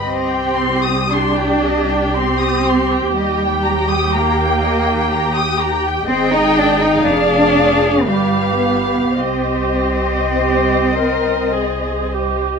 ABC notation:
X:1
M:3/4
L:1/16
Q:1/4=58
K:Cm
V:1 name="Violin section"
e g c' e' c' g e g c' e' c' g | e g b e' b g e g b e' b g | e4 d4 =B4 | c8- c3 z |]
V:2 name="Violin section"
z12 | g12 | g4 f4 f4 | e12 |]
V:3 name="Viola section"
G12- | G12 | A4 A4 G4 | G4 G2 B2 A2 G2 |]
V:4 name="Cello section"
C4 D4 C4 | G,4 B,6 z2 | C E D E D4 G,2 =B,2 | C8- C2 z2 |]
V:5 name="Double bass section" clef=bass
C,,12 | E,,12 | A,,,4 F,,,4 G,,,4 | C,,12 |]